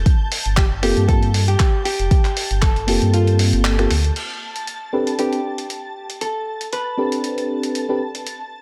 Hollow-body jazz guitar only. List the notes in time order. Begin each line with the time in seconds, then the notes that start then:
0.57 G4
0.83 G4
1.09 A4
1.48 G4
1.85 G4
2.62 A4
3.14 F4
5.19 G4
6.21 A4
6.73 B4